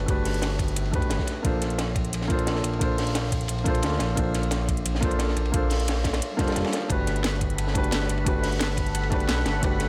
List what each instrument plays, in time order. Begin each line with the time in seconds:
Already playing: felt piano A3 D4 F#4 G4 B4
0.06 analog synth bass G1, felt piano A3 D4 F#4 G4, kick, closed hi-hat, ride
0.10 felt piano B4
0.25 snare, closed hi-hat, open hi-hat
0.34 closed hi-hat
0.42 snare, closed hi-hat, ride
0.59 kick, closed hi-hat, ride
0.68 closed hi-hat
0.76 closed hi-hat, ride
0.85 ride
0.91 analog synth bass G2, felt piano A3 D4 F#4 G4 B4, kick, closed hi-hat, ride
1.02 analog synth bass B1, closed hi-hat, ride
1.10 analog synth bass G1, snare, closed hi-hat, ride
1.19 kick, snare
1.27 snare, closed hi-hat, ride
1.43 analog synth bass A#1, felt piano A#3 D4 F4 A4, kick, closed hi-hat, ride
1.47 felt piano C5
1.62 snare, closed hi-hat, ride
1.70 closed hi-hat
1.78 snare, closed hi-hat, ride
1.95 kick, closed hi-hat, ride
2.05 closed hi-hat
2.13 analog synth bass A#1, closed hi-hat, ride
2.21 snare
2.28 felt piano A#3 D4 F4 A4, kick, closed hi-hat, ride
2.32 felt piano C5
2.39 closed hi-hat, ride
2.47 snare, closed hi-hat, ride
2.55 snare
2.64 analog synth bass A#1, closed hi-hat, ride
2.73 ride
2.79 analog synth bass A#1, felt piano A#3 D4 F4 A4 C5, kick, closed hi-hat, ride
2.98 snare, closed hi-hat, open hi-hat
3.07 closed hi-hat
3.15 snare, closed hi-hat, ride
3.32 kick, closed hi-hat, ride
3.41 closed hi-hat
3.48 analog synth bass A#1, closed hi-hat, ride
3.58 ride
3.64 felt piano A#3 D4 F4 A4 C5, kick, closed hi-hat, ride
3.74 closed hi-hat, ride
3.82 analog synth bass D2, snare, closed hi-hat, ride
3.92 snare
3.99 analog synth bass A#1, snare, closed hi-hat, ride
4.15 analog synth bass A#1, felt piano A#3 D4 F4 A4, kick, closed hi-hat, ride
4.19 felt piano C5
4.34 snare, closed hi-hat, ride
4.43 closed hi-hat
4.51 snare, closed hi-hat, ride
4.69 kick, closed hi-hat, ride
4.77 closed hi-hat
4.86 analog synth bass A#1, closed hi-hat, ride
4.95 snare
5.01 felt piano A#3 D4 F4 A4, kick, closed hi-hat, ride
5.05 felt piano C5
5.11 closed hi-hat, ride
5.19 snare, closed hi-hat, ride
5.28 snare
5.36 analog synth bass A#1, closed hi-hat, ride
5.45 ride
5.52 analog synth bass A#1, felt piano A#3 D4 F4 A4, kick, closed hi-hat, ride
5.56 felt piano C5
5.70 snare, closed hi-hat, open hi-hat
5.80 closed hi-hat
5.88 snare, closed hi-hat, ride
6.04 kick, snare, closed hi-hat, ride
6.13 snare, closed hi-hat, ride
6.22 closed hi-hat, swell
6.37 analog synth bass F1, felt piano A#3 D4 F4 A4, kick, snare, closed hi-hat, ride
6.41 felt piano C5
6.47 snare, closed hi-hat, ride
6.51 snare, ride
6.56 analog synth bass F1, snare, closed hi-hat, ride
6.64 snare, ride
6.72 snare, closed hi-hat, ride
6.88 analog synth bass G1, felt piano A3 D4 F#4 G4, analog synth pad A4 F#5 B5, kick, closed hi-hat, ride
6.92 felt piano B4
7.07 snare, closed hi-hat, ride
7.16 closed hi-hat
7.24 snare, closed hi-hat, ride
7.41 kick, closed hi-hat, ride
7.50 closed hi-hat
7.58 analog synth bass G1, closed hi-hat, ride
7.67 snare
7.73 felt piano A3 D4 F#4 G4 B4, kick, closed hi-hat, ride
7.83 closed hi-hat, ride
7.92 snare, closed hi-hat, ride
8.02 snare
8.09 analog synth bass G1, closed hi-hat, ride
8.18 ride
8.24 analog synth bass G1, felt piano A3 D4 F#4 G4, kick, closed hi-hat, ride
8.29 felt piano B4
8.43 snare, closed hi-hat, open hi-hat
8.52 closed hi-hat
8.60 snare, closed hi-hat, ride
8.77 kick, closed hi-hat, ride
8.86 closed hi-hat
8.95 analog synth bass G1, closed hi-hat, ride
9.03 ride
9.10 felt piano A3 D4 F#4 G4 B4, kick, closed hi-hat, ride
9.20 closed hi-hat, ride
9.28 analog synth bass B1, snare, closed hi-hat, ride
9.37 snare
9.45 analog synth bass G1, snare, closed hi-hat, ride
9.61 analog synth bass G1, felt piano A3 D4 F#4 G4 B4, kick, closed hi-hat, ride
9.79 snare, closed hi-hat, ride